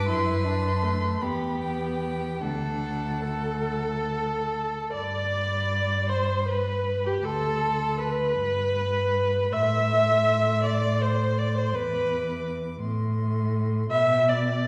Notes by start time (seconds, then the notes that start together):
Already playing: B4
0.08 F#2 E4 C6
0.45 D4
0.83 A3
1.21 E2 B3 G4 B5
1.61 G5
2.42 D2 D4 A4 F#5
3.24 A4
4.93 G2 D5 B5
6.09 C5
6.48 B4
7.06 G4
7.24 D2 A4 C6
7.98 B4
8.36 G2 B5
9.52 A2 E5 C6
10.64 D5
11.02 C5
11.38 D5
11.58 C5
11.73 E2 B4 D6
12.80 A2 C6
13.90 B2 E5 B5
14.10 G5
14.29 D5 B5
14.47 G5